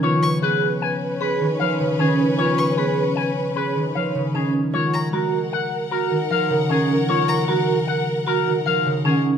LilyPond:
<<
  \new Staff \with { instrumentName = "Violin" } { \time 6/4 \key cis \mixolydian \tempo 4 = 153 r8 cis'''8 r1 r4 | r8 cis'''8 r1 r4 | r8 ais''8 r1 r4 | r8 ais''8 r1 r4 | }
  \new Staff \with { instrumentName = "Clean electric guitar" } { \time 6/4 \key cis \mixolydian cis''8 r8 b'8 r8 gis''8 r8 b'8 r8 eis''8 r8 gis'8 r8 | cis''8 r8 b'8 r8 gis''8 r8 b'8 r8 eis''8 r8 gis'8 r8 | cis''8 r8 ais'8 r8 fis''8 r8 ais'8 r8 eis''8 r8 gis'8 r8 | cis''8 r8 ais'8 r8 fis''8 r8 ais'8 r8 eis''8 r8 gis'8 r8 | }
  \new Staff \with { instrumentName = "French horn" } { \time 6/4 \key cis \mixolydian b'8 b'8 b'8 b'8 b'8 b'8 b'8 b'8 b'8 b'8 b'8 b'8 | b'8 b'8 b'8 b'8 b'8 b'8 b'8 b'8 b'8 b'8 b'8 r8 | ais'8 ais'8 ais'8 ais'8 ais'8 ais'8 ais'8 ais'8 ais'8 ais'8 ais'8 ais'8 | ais'8 ais'8 ais'8 ais'8 ais'8 ais'8 ais'8 ais'8 ais'8 ais'8 ais'8 r8 | }
  \new Staff \with { instrumentName = "String section" } { \time 6/4 \key cis \mixolydian <cis' b'>1.~ | <cis' b'>1~ <cis' b'>4. r8 | <ais' fis''>1.~ | <ais' fis''>1~ <ais' fis''>4. r8 | }
  \new Staff \with { instrumentName = "Vibraphone" } { \time 6/4 \key cis \mixolydian eis'8 r8 gis'8 r4. gis'8 r8 cis''8 r8 cis'8 r8 | eis'8 r8 gis'8 r4. gis'8 r8 cis''8 r8 cis'8 r8 | eis'8 r8 fis'8 r4. fis'8 r8 ais'8 r8 cis'8 r8 | eis'8 r8 fis'8 r4. fis'8 r8 ais'8 r8 cis'8 r8 | }
  \new Staff \with { instrumentName = "Harp" } { \clef bass \time 6/4 \key cis \mixolydian <eis b>4 b2~ b8 dis8 eis8 cis8 dis4 | b4 b2~ b8 dis8 eis8 cis8 dis4 | gis4 gis2~ gis8 dis8 eis8 cis8 dis4 | gis4 gis2~ gis8 dis8 eis8 cis8 dis4 | }
>>